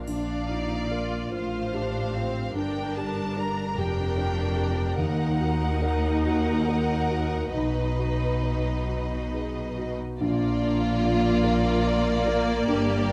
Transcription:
0.07 A#1 A#2 D4 D5 F5, triangle
0.49 D#4 F4
0.92 F4 A#4
1.32 A1 A2 F4 C5 F5
1.74 D4 G4
2.15 C4 F4
2.55 G1 G2 D4 A#4 G5
2.96 G4 A5
3.37 A#4 A#5
3.77 F1 F2 D4 G4 G5
4.18 A#4
4.57 G4
4.97 D#2 D#4 F#5
5.40 F#4
5.82 A#4
6.25 F#4 A#4 F#5
6.68 A#4
7.11 F#4
7.53 B1 B2 D#4 B4 D#5
7.99 F#4
8.44 B4
8.88 F#4
9.33 G#4
9.78 F#4
10.19 A#1 A#2 A#3 F4 D5
10.63 D4
11.04 F4
11.44 A#4
11.86 D5
12.27 A#4
12.68 G1 G2 G4
13.09 D4

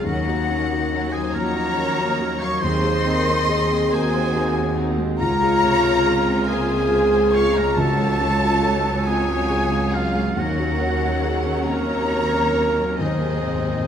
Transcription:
0.03 D#2 F#3 C#4 D#4 F#4 A#4 F#5
0.08 F#5
0.27 A#3 D#4 F#4
0.49 F#3 C#4
0.70 A#3 D#4 F#4
0.91 F#3 C#4
1.12 F#3 A#3 D#4 G#4 C5 G#5
1.33 D#2 F3 F#3 C#4 F#4 A#4 C#5 A#5
1.55 A#3 C#4 D#4
1.77 F#3 C#4 F#4
1.99 A#3 C#4 D#4
2.20 F#3 C#4 F#4
2.40 F#3 A#3 D#4 C#5 F5 C#6
2.61 D#2 C4 D#4 G#4 C5 D#5 C6
2.84 G#3 C4 G#4
3.06 C4 D#4 A#4
3.27 G#3 C4 D#4
3.49 C4 D#4 G#4
3.70 G#3 C4
3.91 D#2 A#3 C4 D#4 G#4 C5 G#5
3.95 F#4
4.12 G#3 C4
4.33 C4 D#4 G#4
4.54 G#3 C4
4.76 C4 D#4
4.97 G#3 C4
5.18 C#2 F4 A#4 C#5 A#5
5.22 F4
5.42 G#4
5.62 C3
5.84 F4
6.06 G#4
6.27 C4
6.48 A#3 G#4 C5 G#5
6.71 C4
6.90 G#4
7.13 C4
7.32 F4 C#5 F5 C#6
7.54 G#3 A#4 C#5 A#5
7.75 C#2 C#3 F#3 C#5 A5
7.80 F#4 A4
8.00 A4
8.20 C#4 F4
8.42 F#4
8.62 F#4 A4
8.84 C#4
9.05 C4 G#4 C#5 G#5
9.09 F4
9.27 C#4
9.50 G#4
9.70 C#4
9.91 F#3 F4 G#4 F5
10.15 G#3
10.35 D#2 F#3 C#4 D#4 A#4 F#5
10.39 F#4
10.59 F#4
10.78 C#4 F#4
11.02 A#4
11.22 F#4 G#4
11.46 C#4
11.64 C4 A#4 C#5 A#5
11.69 A#4
11.89 C#4
12.11 F#4
12.33 C#4
12.56 A#4
12.77 F#3
12.97 D#2 G#2 G#3 C4 D#4 G#4 C5 D#5
13.07 G#2
13.14 G#2
13.22 G#2 G#4
13.31 G#2
13.39 G#2
13.45 G#2 C4
13.54 G#2
13.61 G#2
13.67 G#2 G#4
13.77 G#2

